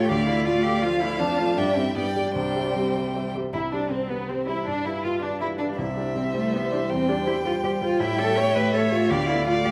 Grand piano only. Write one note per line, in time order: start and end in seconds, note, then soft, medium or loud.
0.00 0.13 A3 medium
0.00 0.13 G4 medium
0.00 0.13 C#5 medium
0.10 0.27 D2 medium
0.28 0.44 A3 medium
0.28 0.45 F4 medium
0.28 0.45 D5 medium
0.46 0.62 A3 medium
0.46 0.63 F4 medium
0.46 0.63 D5 medium
0.64 0.81 A3 soft
0.64 0.81 F4 soft
0.83 0.99 A3 soft
0.83 0.99 F4 medium
0.83 1.00 D5 medium
1.01 1.18 A3 medium
1.01 1.18 F4 medium
1.01 1.19 D5 medium
1.20 1.38 F2 medium
1.39 1.56 A3 medium
1.39 1.56 F4 medium
1.39 1.56 D5 medium
1.57 1.76 G2 medium
1.77 1.94 G3 soft
1.77 1.94 E4 soft
1.77 1.95 E5 soft
1.96 2.15 G2 medium
2.16 2.34 G3 medium
2.16 2.34 G4 soft
2.16 2.34 D5 medium
2.36 2.55 C2 medium
2.56 2.73 G3 medium
2.56 2.74 G4 soft
2.56 2.74 E5 soft
2.76 2.93 G3 soft
2.76 2.93 G4 soft
2.76 2.94 E5 soft
2.95 3.13 G3 soft
2.95 3.13 G4 soft
2.95 3.13 E5 soft
3.15 3.33 G3 soft
3.15 3.33 G4 soft
3.15 3.33 E5 soft
3.35 3.52 G3 soft
3.35 3.52 G4 soft
3.35 3.52 E5 soft
3.54 3.72 C2 soft
3.73 3.90 G3 soft
3.73 3.90 G4 soft
3.73 3.90 C5 soft
3.92 4.09 G3 soft
3.92 4.09 G4 soft
3.92 4.09 C5 soft
4.11 4.27 G3 soft
4.11 4.28 G4 soft
4.11 4.28 C5 soft
4.29 4.46 G3 soft
4.29 4.46 G4 soft
4.29 4.47 C5 soft
4.48 4.65 G3 soft
4.48 4.65 G4 soft
4.48 4.65 C5 soft
4.66 4.85 G2 soft
4.86 5.03 G3 soft
4.86 5.03 F4 soft
4.86 5.03 B4 soft
5.05 5.21 G3 soft
5.05 5.22 B4 soft
5.23 5.40 G3 soft
5.23 5.40 F4 soft
5.23 5.40 B4 soft
5.41 5.58 G3 soft
5.41 5.58 F4 soft
5.41 5.59 B4 soft
5.60 5.77 G3 soft
5.60 5.77 F4 soft
5.60 5.77 B4 soft
5.78 5.97 C2 medium
5.97 6.14 G3 soft
5.97 6.14 E4 soft
5.97 6.14 C5 soft
6.16 6.33 G3 soft
6.16 6.33 E4 soft
6.16 6.33 C5 soft
6.34 6.51 G3 soft
6.34 6.51 E4 soft
6.34 6.52 C5 soft
6.54 6.70 G3 soft
6.54 6.70 E4 soft
6.54 6.71 C5 soft
6.72 6.89 G3 soft
6.72 6.89 E4 soft
6.72 6.89 C5 medium
6.91 7.09 E2 medium
7.09 7.25 G3 soft
7.09 7.25 G4 medium
7.09 7.26 C5 medium
7.27 7.43 G3 medium
7.27 7.44 G4 medium
7.27 7.44 C5 medium
7.46 7.62 G3 soft
7.46 7.62 G4 soft
7.46 7.63 C5 soft
7.63 7.80 G3 medium
7.63 7.81 G4 soft
7.63 7.81 C5 soft
7.82 7.99 G3 medium
7.82 7.99 G4 medium
7.82 7.99 C5 medium
8.00 8.18 A2 medium
8.18 8.35 A3 medium
8.18 8.35 G4 medium
8.18 8.36 C#5 medium
8.37 8.53 A3 medium
8.37 8.54 G4 medium
8.37 8.54 C#5 medium
8.56 8.72 A3 soft
8.56 8.72 G4 soft
8.56 8.72 C#5 soft
8.74 8.90 A3 soft
8.74 8.90 G4 medium
8.74 8.91 C#5 medium
8.91 9.08 A3 soft
8.91 9.08 G4 medium
8.91 9.09 C#5 medium
9.10 9.28 D2 medium
9.28 9.45 A3 medium
9.28 9.45 F4 medium
9.28 9.46 D5 medium
9.47 9.63 A3 medium
9.47 9.64 F4 medium
9.47 9.64 D5 medium
9.65 9.71 A3 soft
9.65 9.71 F4 soft
9.65 9.71 D5 medium